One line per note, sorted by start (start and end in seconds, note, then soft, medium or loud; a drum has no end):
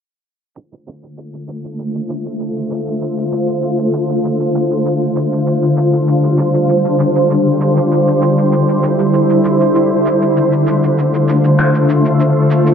0.56 12.74 D3 medium
0.56 5.43 A3 medium
0.56 7.87 F4 medium
0.56 12.74 C5 medium
0.56 cabasa soft
0.73 cabasa soft
0.87 cabasa medium
1.03 cabasa soft
1.18 cabasa soft
1.34 cabasa soft
1.48 cabasa medium
1.64 cabasa soft
1.79 cabasa soft
1.95 cabasa soft
2.10 cabasa medium
2.26 cabasa soft
2.40 cabasa soft
2.71 cabasa medium
2.87 cabasa soft
3.02 cabasa soft
3.18 cabasa soft
3.32 cabasa medium
3.48 cabasa soft
3.63 cabasa soft
3.78 cabasa soft
3.94 cabasa medium
4.09 cabasa soft
4.25 cabasa soft
4.40 cabasa soft
4.55 cabasa medium
4.71 cabasa soft
4.86 cabasa soft
5.16 cabasa medium
5.32 cabasa soft
5.47 10.33 G3 medium
5.47 cabasa soft
5.63 cabasa soft
5.77 cabasa medium
5.93 cabasa soft
6.08 cabasa soft
6.24 cabasa soft
6.38 cabasa medium
6.54 cabasa soft
6.69 cabasa soft
6.85 cabasa soft
6.99 cabasa medium
7.16 cabasa soft
7.31 cabasa soft
7.61 cabasa medium
7.77 cabasa soft
7.92 10.34 E4 medium
7.92 cabasa soft
8.08 cabasa soft
8.22 cabasa medium
8.38 cabasa soft
8.53 cabasa soft
8.69 cabasa soft
8.83 cabasa medium
8.99 cabasa soft
9.14 cabasa soft
9.30 cabasa soft
9.45 cabasa medium
9.61 cabasa soft
9.75 cabasa soft
10.06 cabasa medium
10.22 cabasa soft
10.37 12.74 A3 medium
10.37 12.74 F4 medium
10.37 cabasa soft
10.52 cabasa soft
10.67 cabasa medium
10.84 cabasa soft
10.99 cabasa soft
11.14 cabasa soft
11.29 cabasa medium
11.44 cabasa soft
11.59 finger snap medium
11.59 cabasa soft
11.75 cabasa soft
11.89 cabasa medium
12.05 cabasa soft
12.20 cabasa soft
12.51 cabasa medium
12.67 cabasa soft